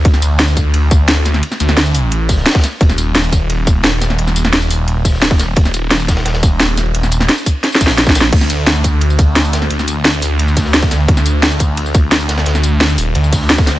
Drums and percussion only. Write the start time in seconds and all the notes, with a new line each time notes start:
0.05 kick, closed hi-hat, ride
0.14 snare, tambourine
0.22 closed hi-hat, ride, tambourine
0.39 snare, closed hi-hat, ride
0.48 tambourine
0.57 kick, closed hi-hat, ride, tambourine
0.74 closed hi-hat, ride
0.91 kick, closed hi-hat, ride, tambourine
1.08 snare, closed hi-hat, ride
1.25 snare, closed hi-hat, ride, tambourine
1.34 snare, ride
1.43 closed hi-hat, ride
1.52 snare, tambourine
1.60 closed hi-hat, ride, tambourine
1.69 snare
1.76 snare, closed hi-hat, ride
1.86 tambourine
1.95 open hi-hat, tambourine
2.12 closed hi-hat, ride
2.29 kick, closed hi-hat, open hi-hat, tambourine
2.37 snare
2.46 snare, closed hi-hat, ride
2.51 snare, ride
2.54 kick, snare, ride
2.59 snare, ride
2.63 snare, closed hi-hat, ride, tambourine
2.72 ride
2.81 kick, closed hi-hat, ride
2.89 snare, tambourine
2.98 closed hi-hat, ride, tambourine
3.15 snare, closed hi-hat, ride
3.24 tambourine
3.32 kick, closed hi-hat, ride, tambourine
3.50 closed hi-hat, ride
3.67 kick, closed hi-hat, ride, tambourine
3.84 snare, closed hi-hat, ride
4.01 snare, closed hi-hat, ride, tambourine
4.10 snare, ride
4.18 closed hi-hat, ride
4.27 snare, tambourine
4.36 closed hi-hat, ride, tambourine
4.45 snare
4.53 snare, closed hi-hat, ride
4.62 tambourine
4.70 open hi-hat, ride, tambourine
4.88 closed hi-hat, ride
5.05 kick, closed hi-hat, open hi-hat, tambourine
5.14 snare
5.22 snare, closed hi-hat, ride
5.31 kick, snare
5.39 snare, closed hi-hat, ride, tambourine
5.48 ride
5.56 kick, closed hi-hat, ride
5.65 snare, tambourine
5.74 closed hi-hat, ride, tambourine
5.91 snare, closed hi-hat, ride
6.00 tambourine
6.08 kick, snare, closed hi-hat, ride, tambourine
6.17 snare, ride
6.25 snare, closed hi-hat, ride
6.34 snare, ride
6.43 kick, closed hi-hat, ride, tambourine
6.60 snare, closed hi-hat, ride
6.77 snare, closed hi-hat, ride, tambourine
6.86 ride
6.94 closed hi-hat, ride
7.03 snare, tambourine
7.11 closed hi-hat, ride, tambourine
7.21 snare
7.29 snare, closed hi-hat, ride
7.38 tambourine
7.46 kick, open hi-hat, ride, tambourine
7.63 snare, closed hi-hat, ride
7.72 snare, tambourine
7.81 kick, closed hi-hat, open hi-hat, tambourine
7.87 snare
7.90 snare
7.97 snare, closed hi-hat, ride
8.07 kick, snare, tambourine
8.15 snare, closed hi-hat, ride, tambourine
8.21 snare
8.33 kick, closed hi-hat, ride, crash
8.41 snare, tambourine
8.50 closed hi-hat, ride, tambourine
8.66 snare, closed hi-hat, ride
8.76 tambourine
8.84 kick, closed hi-hat, ride, tambourine
9.01 closed hi-hat, ride
9.10 tambourine
9.19 kick, closed hi-hat, ride, tambourine
9.36 snare, closed hi-hat, ride
9.45 tambourine
9.53 snare, closed hi-hat, ride, tambourine
9.62 snare
9.70 closed hi-hat, ride
9.79 snare, tambourine
9.88 closed hi-hat, ride, tambourine
10.04 snare, closed hi-hat, ride
10.14 tambourine
10.22 open hi-hat, ride, tambourine
10.39 closed hi-hat, ride
10.48 tambourine
10.57 kick, closed hi-hat, open hi-hat, tambourine
10.65 snare
10.73 snare, closed hi-hat, ride
10.83 kick, snare, tambourine
10.91 snare, closed hi-hat, ride, tambourine
11.00 ride
11.08 kick, closed hi-hat, ride
11.17 snare, tambourine
11.26 closed hi-hat, ride, tambourine
11.43 snare, closed hi-hat, ride
11.52 tambourine
11.59 kick, closed hi-hat, ride, tambourine
11.77 closed hi-hat, ride
11.86 tambourine
11.95 kick, closed hi-hat, ride, tambourine
12.12 snare, closed hi-hat, ride
12.20 tambourine
12.29 snare, closed hi-hat, ride, tambourine
12.37 snare, ride
12.46 snare, closed hi-hat, ride
12.55 snare, tambourine
12.64 closed hi-hat, ride, tambourine
12.80 snare, closed hi-hat, ride
12.89 tambourine
12.98 open hi-hat, ride, tambourine
13.15 closed hi-hat, ride
13.24 tambourine
13.33 kick, closed hi-hat, open hi-hat, tambourine
13.41 snare
13.50 snare, closed hi-hat, ride
13.58 kick, snare, tambourine
13.67 snare, closed hi-hat, ride, tambourine
13.76 ride